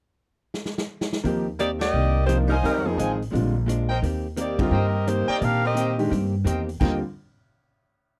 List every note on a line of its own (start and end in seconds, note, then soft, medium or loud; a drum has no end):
0.54 snare medium
0.65 snare medium
0.78 snare medium
1.01 snare loud
1.13 snare medium
1.24 1.90 D#2 medium
1.24 1.47 D#3 medium
1.24 1.44 F3 medium
1.24 1.44 A#3 soft
1.24 1.48 A#3 medium
1.24 1.48 C4 medium
1.24 1.44 D#4 medium
1.24 1.45 G4 medium
1.24 1.49 G4 medium
1.24 kick soft
1.24 open hi-hat soft
1.59 1.82 D#3 medium
1.59 1.69 A#3 medium
1.59 1.83 A#3 medium
1.59 1.83 C4 medium
1.59 1.70 D#4 medium
1.59 1.69 G4 medium
1.59 1.83 G4 medium
1.59 1.69 D5 medium
1.59 closed hi-hat soft
1.80 2.25 A#3 medium
1.80 2.25 G4 loud
1.80 2.25 D5 medium
1.80 2.25 D#5 loud
1.80 snare medium
1.80 ride medium
1.93 2.60 C2 medium
1.93 2.16 C3 soft
1.93 2.17 D#3 soft
1.93 2.17 A#3 soft
1.93 2.18 D4 soft
2.27 2.52 C3 medium
2.27 2.52 D#3 medium
2.27 2.48 F3 medium
2.27 2.37 A#3 medium
2.27 2.49 A#3 medium
2.27 2.53 A#3 medium
2.27 2.37 D#4 medium
2.27 2.49 D#4 medium
2.27 2.37 G4 medium
2.27 2.37 C5 medium
2.27 cross-stick medium
2.27 closed hi-hat medium
2.31 2.53 D4 medium
2.31 2.49 F4 medium
2.48 2.55 G3 medium
2.48 2.54 D4 medium
2.48 2.54 D#4 medium
2.48 2.55 A#4 medium
2.48 2.96 C5 loud
2.48 2.96 D#5 medium
2.48 2.95 F5 medium
2.48 2.96 G#5 loud
2.48 open hi-hat soft
2.62 2.86 F2 soft
2.62 2.96 F2 medium
2.62 2.86 D#3 soft
2.62 2.84 G3 medium
2.62 2.86 G#3 soft
2.62 2.83 C4 medium
2.62 2.87 C4 medium
2.62 2.83 D#4 medium
2.62 2.83 A#4 medium
2.62 kick soft
2.62 open hi-hat soft
2.84 3.20 F3 medium
2.84 2.97 F3 medium
2.84 2.97 A#3 medium
2.84 3.20 C4 medium
2.84 3.20 D#4 medium
2.84 2.98 D#4 medium
2.84 3.20 G#4 medium
2.84 2.98 G#4 medium
2.97 3.30 A1 medium
2.97 3.21 F2 medium
2.97 3.21 D#3 medium
2.97 3.22 G#3 medium
2.97 3.22 C4 medium
2.97 3.13 C5 medium
2.97 3.13 D#5 medium
2.97 3.13 F5 medium
2.97 3.13 G#5 medium
2.97 closed hi-hat medium
3.22 open hi-hat soft
3.31 3.99 A#1 medium
3.31 3.55 A#2 soft
3.31 3.53 D3 medium
3.31 3.55 F3 medium
3.31 3.53 G3 medium
3.31 3.56 G#3 medium
3.31 3.53 C4 soft
3.31 3.56 D4 medium
3.31 kick soft
3.35 3.54 F4 medium
3.35 open hi-hat soft
3.66 3.90 A#2 medium
3.66 3.91 F3 medium
3.66 3.91 G#3 medium
3.66 3.92 D4 medium
3.66 cross-stick medium
3.66 closed hi-hat medium
3.89 3.98 A#4 medium
3.89 3.98 C5 medium
3.89 3.98 D#5 medium
3.89 3.98 G5 loud
4.02 4.69 D#2 medium
4.02 4.26 D#3 medium
4.02 4.26 A#3 medium
4.02 4.27 C4 medium
4.02 4.27 G4 medium
4.02 kick soft
4.02 open hi-hat soft
4.37 4.60 D#3 medium
4.37 4.61 A#3 medium
4.37 4.59 A#3 medium
4.37 4.61 C4 medium
4.37 4.59 D#4 medium
4.37 4.61 G4 medium
4.37 4.59 G4 medium
4.37 4.59 D5 medium
4.37 closed hi-hat medium
4.59 4.71 D3 medium
4.59 4.71 G3 medium
4.59 4.71 C4 medium
4.59 5.07 C4 medium
4.59 4.72 F4 medium
4.59 5.07 G4 medium
4.59 5.07 A#4 medium
4.59 5.08 D#5 medium
4.59 kick medium
4.59 ride medium
4.71 5.24 G2 loud
4.71 4.95 D#3 soft
4.71 4.96 A#3 soft
4.71 4.96 C4 soft
4.71 4.97 G4 soft
4.71 4.86 A#4 medium
4.71 4.87 C5 medium
4.71 4.87 D#5 medium
4.71 4.87 G5 medium
5.07 5.30 D#3 medium
5.07 5.27 A#3 medium
5.07 5.31 A#3 medium
5.07 5.31 C4 medium
5.07 5.27 D#4 medium
5.07 5.27 G4 medium
5.07 5.31 G4 medium
5.07 5.29 C5 medium
5.07 cross-stick medium
5.07 closed hi-hat soft
5.28 5.42 A#3 medium
5.28 5.42 D#4 medium
5.28 5.42 G4 medium
5.28 5.37 A#4 loud
5.28 5.37 C5 medium
5.28 5.42 D5 medium
5.28 5.37 D#5 medium
5.28 5.37 G5 loud
5.28 muted upright bass stroke soft
5.40 6.08 A#2 medium
5.40 5.64 D#3 soft
5.40 5.65 A#3 soft
5.40 5.65 C4 soft
5.40 5.64 D4 medium
5.40 5.65 G4 soft
5.40 5.64 G4 medium
5.40 5.64 A#4 medium
5.40 5.64 F5 loud
5.40 kick soft
5.40 open hi-hat soft
5.65 5.97 C4 medium
5.65 5.97 G4 medium
5.65 5.97 A#4 medium
5.65 5.97 D#5 medium
5.74 5.99 D#3 medium
5.74 5.99 A#3 medium
5.74 5.99 C4 medium
5.74 6.00 G4 medium
5.74 5.91 A#4 medium
5.74 5.91 C5 medium
5.74 5.91 D#5 medium
5.74 5.91 G5 medium
5.74 closed hi-hat medium
5.98 6.10 D#3 medium
5.98 6.10 G#3 medium
5.98 6.11 D4 medium
5.98 6.11 G4 medium
5.98 open hi-hat soft
6.10 6.44 G2 medium
6.10 6.34 D#3 soft
6.10 6.34 A#3 soft
6.10 6.35 C4 medium
6.10 6.35 G4 medium
6.10 kick soft
6.10 open hi-hat soft
6.44 6.78 E2 medium
6.44 6.68 D#3 medium
6.44 6.69 A#3 medium
6.44 6.69 C4 medium
6.44 6.69 G4 medium
6.44 6.61 A#4 medium
6.44 6.61 C5 medium
6.44 6.61 D#5 medium
6.44 6.61 G5 medium
6.44 cross-stick medium
6.44 closed hi-hat medium
6.69 open hi-hat soft
6.80 7.01 D#2 loud
6.80 7.01 D3 medium
6.80 6.98 D#3 medium
6.80 7.01 G3 medium
6.80 6.99 A#3 medium
6.80 7.01 C4 medium
6.80 6.99 C4 medium
6.80 7.01 F4 medium
6.80 7.00 G4 medium
6.80 6.95 A#4 medium
6.80 6.95 C5 medium
6.80 6.95 D#5 medium
6.80 6.95 G5 medium
6.80 kick loud
6.80 crash medium